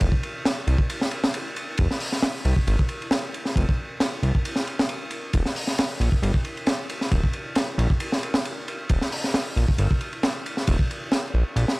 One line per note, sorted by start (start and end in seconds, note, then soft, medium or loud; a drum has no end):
0.01 0.10 F1 loud
0.01 kick loud
0.01 ride medium
0.12 kick loud
0.23 ride medium
0.45 snare loud
0.45 ride medium
0.67 0.77 C2 loud
0.67 ride medium
0.78 kick loud
0.90 ride medium
1.01 snare medium
1.11 ride medium
1.24 snare loud
1.34 ride loud
1.56 ride medium
1.77 1.88 F1 loud
1.77 kick loud
1.77 ride medium
1.91 snare soft
2.00 open hi-hat medium
2.12 snare soft
2.23 snare loud
2.23 ride medium
2.45 2.54 C2 loud
2.45 ride medium
2.56 kick medium
2.67 2.77 G#1 loud
2.67 ride medium
2.79 kick loud
2.89 ride medium
3.02 ride soft
3.11 snare loud
3.11 ride medium
3.34 ride medium
3.45 snare soft
3.56 3.65 F1 loud
3.56 kick loud
3.56 ride loud
3.69 kick loud
4.00 snare loud
4.00 ride loud
4.23 4.32 C2 loud
4.23 ride medium
4.35 kick medium
4.45 ride loud
4.56 snare medium
4.67 ride medium
4.79 snare loud
4.89 ride medium
5.11 ride medium
5.33 5.43 D#1 loud
5.33 kick loud
5.33 ride medium
5.46 snare soft
5.56 open hi-hat medium
5.67 snare soft
5.78 snare loud
5.78 ride medium
6.00 6.10 A#1 loud
6.00 ride medium
6.12 kick loud
6.22 6.32 G1 loud
6.22 ride medium
6.34 kick medium
6.45 ride medium
6.57 ride soft
6.67 snare loud
6.67 ride medium
6.89 ride medium
7.01 snare soft
7.12 7.21 D#1 loud
7.12 kick loud
7.12 ride medium
7.24 kick medium
7.33 ride medium
7.55 snare loud
7.55 ride medium
7.78 7.88 A#1 loud
7.78 ride medium
7.90 kick loud
8.00 ride loud
8.12 snare medium
8.23 ride medium
8.34 snare loud
8.45 ride medium
8.68 ride medium
8.89 8.99 D#1 loud
8.89 kick loud
8.89 ride medium
9.01 snare medium
9.12 open hi-hat medium
9.24 snare soft
9.34 snare loud
9.34 ride medium
9.56 9.66 A#1 loud
9.56 ride medium
9.69 kick loud
9.78 9.88 G1 loud
9.78 ride medium
9.91 kick medium
10.01 ride medium
10.13 ride soft
10.23 snare loud
10.23 ride medium
10.46 ride medium
10.57 snare soft
10.67 10.77 D#1 loud
10.67 kick loud
10.67 ride loud
10.79 kick loud
10.91 ride medium
11.12 snare loud
11.12 ride medium
11.34 11.43 A#1 loud
11.56 11.65 A#1 loud
11.56 ride medium
11.68 snare medium